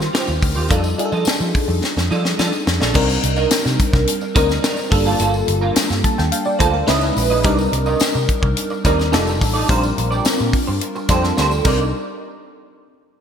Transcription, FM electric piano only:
0.00 0.70 G3 medium
0.00 0.72 C4 medium
0.00 0.71 D#4 medium
0.00 0.71 F4 medium
0.00 0.72 A#4 medium
0.70 0.94 G3 medium
0.70 0.94 D4 medium
0.70 0.94 D#4 medium
0.70 0.95 F4 medium
0.70 0.95 A4 medium
0.98 1.95 G3 medium
0.98 1.95 D4 medium
0.98 1.95 D#4 medium
0.98 1.95 F4 medium
0.98 1.05 G#4 medium
1.05 1.98 A4 medium
2.94 3.91 G3 medium
2.94 3.91 C4 medium
2.94 3.91 D4 medium
2.94 3.91 D#4 medium
2.94 3.92 A#4 loud
4.35 4.90 G3 medium
4.35 4.91 C4 medium
4.35 4.91 D4 medium
4.35 4.92 D#4 medium
4.35 4.92 A#4 medium
4.91 5.87 G3 medium
4.91 5.87 A#3 medium
4.91 5.88 D4 medium
4.91 5.88 F4 medium
4.91 5.88 A4 loud
6.04 6.17 A5 medium
6.18 6.31 G5 medium
6.32 6.45 F5 medium
6.46 6.59 D5 medium
6.59 6.73 C5 medium
6.74 7.00 A#4 medium
6.87 7.35 G#3 loud
6.87 7.36 C#4 medium
6.87 7.36 D#4 medium
6.87 7.36 E4 medium
6.87 7.36 B4 loud
7.44 8.40 G3 medium
7.44 8.40 C4 medium
7.44 8.41 D4 medium
7.44 8.41 D#4 medium
7.44 8.41 A#4 loud
8.85 9.11 G3 medium
8.85 9.13 C4 medium
8.85 9.11 D4 medium
8.85 9.12 D#4 medium
8.85 9.13 A#4 loud
9.12 9.60 G3 medium
9.12 9.60 D4 medium
9.12 9.61 D#4 medium
9.12 9.61 F4 medium
9.12 9.61 A4 loud
9.69 10.65 G3 medium
9.69 10.65 C4 medium
9.69 10.65 D4 medium
9.69 10.66 F4 medium
9.69 10.66 A#4 loud
11.09 11.64 G3 medium
11.09 11.63 C4 medium
11.09 11.64 D4 medium
11.09 11.66 F4 medium
11.09 11.66 A4 medium
11.65 11.91 G3 medium
11.65 11.91 C4 medium
11.65 11.91 D4 medium
11.65 11.91 D#4 medium
11.65 11.91 A#4 medium

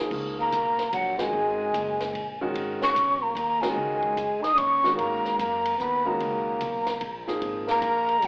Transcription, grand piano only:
0.00 0.49 F3 medium
0.00 0.50 A#3 medium
0.00 0.50 D#4 medium
0.00 0.50 G#4 medium
1.19 1.71 D#3 medium
1.19 1.71 G#3 medium
1.19 1.71 C#4 medium
1.19 1.71 F#4 medium
2.41 2.93 D#3 medium
2.41 2.93 G#3 medium
2.41 2.93 C#4 medium
2.41 2.93 F#4 medium
3.62 4.14 D#3 medium
3.62 4.14 G#3 medium
3.62 4.14 C#4 medium
3.62 4.15 F#4 medium
4.84 5.36 D#3 medium
4.84 5.36 G#3 medium
4.84 5.36 C#4 medium
4.84 5.36 F#4 medium
6.05 6.58 D#3 medium
6.05 6.58 G#3 medium
6.05 6.58 C#4 medium
6.05 6.58 F#4 medium
7.27 7.79 F3 medium
7.27 7.80 A#3 medium
7.27 7.80 D#4 medium
7.27 7.80 G#4 medium

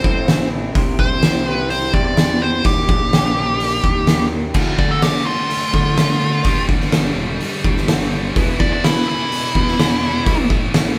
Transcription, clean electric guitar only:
0.03 0.53 A2 medium
0.03 0.52 E3 medium
0.03 0.25 A3 medium
0.03 0.26 C4 medium
0.03 0.27 E4 medium
0.03 0.28 A4 medium
0.26 0.52 A3 medium
0.26 0.51 C4 medium
0.26 0.50 E4 medium
0.26 0.49 A4 medium
0.50 0.75 A3 soft
0.50 0.74 C4 medium
0.50 0.74 E4 medium
0.50 0.73 A4 medium
0.75 1.23 C3 medium
0.75 1.48 G3 medium
0.75 1.00 C4 medium
0.75 0.99 E4 medium
0.75 0.99 G4 medium
0.75 0.97 C5 loud
0.98 1.21 C4 medium
0.98 1.22 E4 medium
0.98 1.24 G4 medium
0.98 1.24 C5 medium
1.22 1.46 C4 medium
1.22 1.46 E4 medium
1.22 1.46 G4 medium
1.22 1.45 C5 medium
1.46 1.95 C3 medium
1.46 1.95 G3 medium
1.46 1.68 C4 medium
1.46 1.69 E4 medium
1.46 1.70 G4 medium
1.46 1.71 C5 medium
1.69 1.94 C4 medium
1.69 1.93 E4 medium
1.69 1.93 G4 medium
1.69 1.92 C5 medium
1.93 2.42 C3 medium
1.93 2.42 G3 medium
1.93 2.15 C4 medium
1.93 2.17 E4 medium
1.93 2.17 G4 medium
1.93 2.18 C5 medium
2.17 2.42 C4 medium
2.17 2.40 E4 medium
2.17 2.39 G4 medium
2.17 2.38 C5 medium
2.39 2.64 C4 soft
2.39 2.64 E4 medium
2.39 2.63 G4 medium
2.39 2.63 C5 medium
2.64 3.12 D#2 medium
2.64 3.10 A#2 medium
2.64 2.90 D#3 medium
2.64 2.88 G3 loud
2.64 2.87 G4 loud
2.88 3.11 D#3 medium
2.88 3.12 G3 medium
2.88 3.13 G4 medium
3.11 3.36 A#2 medium
3.11 3.36 D#3 medium
3.11 3.35 G3 medium
3.11 3.34 G4 medium
3.35 3.85 D#2 medium
3.35 3.57 A#2 medium
3.35 3.59 D#3 medium
3.35 3.60 G3 medium
3.35 3.60 G4 loud
3.59 3.84 A#2 medium
3.59 3.83 D#3 medium
3.59 3.83 G3 medium
3.59 3.81 G4 medium
3.82 4.32 D#2 medium
3.82 4.05 A#2 medium
3.82 4.07 D#3 medium
3.82 4.08 G3 medium
3.82 4.09 G4 loud
4.06 4.53 A#2 medium
4.06 4.32 D#3 medium
4.06 4.31 G3 medium
4.06 4.29 G4 medium
4.30 4.55 D#3 medium
4.30 4.54 G3 medium
4.30 4.53 G4 medium
4.54 4.77 D2 medium
4.54 4.77 A2 medium
4.54 4.78 D3 medium
4.78 5.00 D2 medium
4.78 5.00 A2 medium
5.02 5.24 D2 medium
5.02 5.25 A2 medium
5.02 5.25 D3 loud
5.26 5.47 D2 medium
5.26 5.48 A2 medium
5.49 5.71 D2 medium
5.49 5.71 A2 medium
5.73 5.96 D2 medium
5.73 5.96 A2 medium
5.73 5.97 D3 loud
5.97 6.19 D2 medium
6.21 6.42 D2 medium
6.21 6.42 A2 medium
6.44 6.67 G2 medium
6.44 6.67 D3 medium
6.44 6.67 G3 loud
6.68 6.90 G2 medium
6.68 6.90 D3 medium
6.92 7.15 G2 medium
6.92 7.15 D3 medium
6.92 7.15 G3 medium
7.16 7.38 G2 medium
7.16 7.38 D3 medium
7.40 7.61 G2 medium
7.40 7.62 D3 medium
7.63 7.86 G2 medium
7.63 7.87 D3 medium
7.63 7.87 G3 loud
7.88 8.10 G2 medium
7.88 8.10 D3 medium
8.13 8.34 G2 medium
8.13 8.34 D3 medium
8.36 8.58 E2 medium
8.36 8.59 B2 medium
8.36 8.59 E3 medium
8.60 8.81 E2 medium
8.60 8.81 B2 medium
8.83 9.06 E2 medium
8.83 9.06 B2 loud
8.83 9.06 E3 medium
9.07 9.28 E2 medium
9.07 9.29 B2 medium
9.31 9.52 E2 medium
9.31 9.52 B2 medium
9.54 9.77 E2 medium
9.54 9.77 B2 medium
9.54 9.78 E3 loud
10.02 10.24 E2 medium
10.02 10.24 B2 medium
10.26 10.48 A2 medium
10.26 10.49 E3 medium
10.26 10.49 A3 medium
10.50 10.71 A2 medium
10.50 10.72 E3 medium
10.73 10.96 A2 medium
10.73 10.96 E3 medium
10.73 10.97 A3 medium

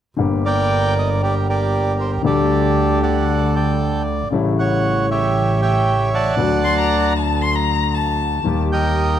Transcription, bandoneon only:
0.46 1.22 A#4 medium
0.46 1.22 D5 medium
0.46 0.94 G5 medium
0.99 1.10 D#5 medium
1.23 1.47 G4 medium
1.23 1.48 A#4 medium
1.23 1.35 D5 medium
1.49 2.22 G4 medium
1.49 2.22 A#4 medium
1.49 1.97 D5 medium
2.00 2.12 C5 medium
2.26 3.25 G4 medium
2.26 3.02 A4 medium
2.26 2.99 D5 medium
3.03 4.02 A4 medium
3.03 3.54 D5 medium
3.03 3.56 F#5 medium
3.56 4.29 D5 medium
3.56 4.03 G5 medium
4.59 5.10 C#5 medium
4.59 5.06 F#5 medium
5.11 6.10 G4 soft
5.11 5.61 C#5 medium
5.11 5.61 E5 medium
5.62 6.35 C#5 medium
5.62 6.35 E5 medium
5.62 6.10 G5 medium
6.14 7.13 D5 medium
6.14 7.13 F#5 medium
6.14 7.13 A5 medium
8.72 9.20 A#4 medium
8.72 9.20 D#5 medium
8.72 9.20 G5 medium

